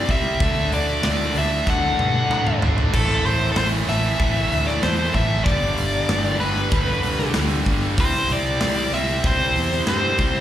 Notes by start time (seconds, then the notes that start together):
Already playing: C3 G3 C4 E4 D5
0.09 C2 C3 G3 C4 E5, kick, open hi-hat
0.40 D2 D3 F#3 A3 D4, kick, open hi-hat
0.72 D2 D5, open hi-hat
1.03 D2 D3 A3 D4 D5, snare, open hi-hat
1.35 D2 D3 A3 D4 E5, open hi-hat
1.67 D2 D3 F#3 A3 D4 F#5, kick, snare
1.99 G2, high tom
2.29 A2 D3 A3 D4, mid tom
2.47 mid tom
2.61 G#1 D3 A3 D4, floor tom
2.78 floor tom
2.93 A1 A2 E3 A3 C4 E4 A4, kick, crash
3.25 A1 C5, open hi-hat
3.52 A4
3.56 A1 A2 E3 A3 C5, snare, open hi-hat
3.88 A1 A2 E3 A3 E5, snare, open hi-hat
4.19 A1 A2 E3 A3 C4 E4, kick, open hi-hat
4.52 D2, open hi-hat
4.67 D5, snare
4.83 E2 A2 E3 A3 C5, snare, open hi-hat
5.14 A1 A2 E3 A3 E5, kick, open hi-hat
5.44 G1 G2 D3 G3 B3 D4 D5, kick, open hi-hat
5.77 G1, open hi-hat
6.09 G1 G2 D3 G3, snare, open hi-hat
6.40 G1 G2 D3 G3 B4, open hi-hat
6.71 G1 G2 D3 G3 B3 D4, kick, open hi-hat
7.03 C2, open hi-hat
7.19 snare
7.34 D2 G2 D3 G3, snare, open hi-hat
7.65 G1 G2 D3 G3, kick, open hi-hat
7.98 C2 C3 G3 C4 E4 C5, kick, open hi-hat
8.29 C2 D5, open hi-hat
8.61 C2 C3 G3 C4, snare, open hi-hat
8.92 C2 C3 G3 C4 E5, snare, open hi-hat
9.23 C2 C3 G3 C4 E4 C5, kick, open hi-hat
9.56 E2, open hi-hat
9.71 snare
9.87 G2 C3 G3 C4 C5, snare
10.18 C2 C3 G3 C4, kick, open hi-hat